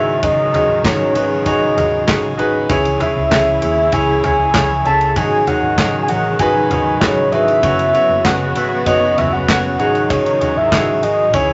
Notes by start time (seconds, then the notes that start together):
Already playing: G#1 G#2 C#3 D#3 F#3 G#3 C#4 D#4 F#4 G#4 C#5 E5
0.22 G#2 C#3 F#3 C#4 D#4 G#4 D#5, kick, ride
0.53 F#3 C#4 D#4 F#4 G#4 C#5, floor tom, ride
0.69 G#1
0.84 G#1 G#2 C#3 F#3 C#4 D#4 F#4 G#4 C#5, kick, snare, clap, ride
1.15 G#1 F#3 C#4 D#4 F#4 G#4 B4, ride
1.45 G#1 F#3 C#4 D#4 F#4 G#4 C#5 D#5, kick, ride
1.76 G#1 F#3 C#4 D#4 F#4 G#4 C#5, floor tom, ride
2.07 G#1 G#2 C#3 F#3 C#4 D#4 F#4 G#4 C#5, kick, snare, clap, ride
2.37 G#1 F#3 C#4 D#4 F#4 G#4 B4, ride
2.69 C#2 C#3 E3 C#4 E4 G#4 C#5, kick, ride
2.85 ride
2.99 C#4 E4 G#4 C#5 E5, floor tom, ride
3.16 C#2
3.30 C#2 C#3 E3 C#4 E4 G#4 C#5, kick, snare, clap, ride
3.61 D#2 C#4 E4 G#4 C#5, ride
3.92 C#2 E3 C#4 E4 G#4 C#5 G#5, kick, ride
4.23 C#2 C#4 E4 G#4 C#5 G#5, floor tom, ride
4.54 C#2 C#3 E3 C#4 E4 G#4 C#5, kick, snare, clap, ride
4.85 C#2 C#4 E4 G#4 E5 A5, ride
5.01 ride
5.16 G#1 G#2 C#3 D#3 F#3 C#4 D#4 F#4 G#4 C#5 G#5, kick, ride
5.47 F#3 C#4 D#4 F#4 G#4 C#5 F#5, floor tom, ride
5.63 G#1
5.78 G#1 G#2 C#3 F#3 C#4 D#4 F#4 G#4 C#5, kick, snare, clap, ride
6.03 G#5
6.08 A1 F#3 C#4 D#4 F#4 G#4 C#5 F#5, ride
6.39 G#1 F#3 C#4 D#4 F#4 G#4 B4 G#5, kick, ride
6.70 G#1 F#3 C#4 D#4 F#4 G#4 C#5, floor tom, ride
7.01 G#1 G#2 C#3 F#3 C#4 D#4 F#4 G#4 C#5, kick, snare, clap, ride
7.32 G#1 F#3 C#4 D#4 F#4 G#4 B4 E5, ride
7.48 ride
7.62 F#1 F#2 C#3 F#3 B3 C#4 F#4 B4 C#5, kick, ride
7.79 ride
7.93 F#3 B3 C#4 F#4 B4 C#5, ride
8.09 F#1
8.24 F#1 F#2 C#3 F#3 B3 C#4 F#4 B4 D#5 F#5, kick, snare, clap, ride
8.55 G#1 F#3 B3 C#4 F#4 B4 E5, ride
8.86 F#1 F#3 B3 C#4 F#4 B4 C#5 D#5, kick, ride
9.17 F#1 F#3 B3 C#4 F#4 B4 D#5 E5, floor tom, ride
9.33 F#5
9.48 F#1 F#2 C#3 F#3 B3 C#4 F#4 B4 C#5, kick, snare, clap, ride
9.79 G#1 G#2 D#3 F#3 G#3 C#4 D#4 F#4 G#4 C#5 F#5, ride
9.95 ride
10.10 G#2 C#3 F#3 C#4 D#4 G#4 C#5, kick, ride
10.26 ride
10.40 F#3 C#4 D#4 F#4 G#4 C#5, floor tom, ride
10.57 G#1 E5
10.71 G#1 G#2 C#3 F#3 C#4 D#4 F#4 G#4 C#5, kick, snare, clap, ride
11.02 G#1 F#3 C#4 D#4 F#4 G#4 D#5, ride
11.33 C#2 C#3 E3 C#4 E4 G#4 C#5, kick, ride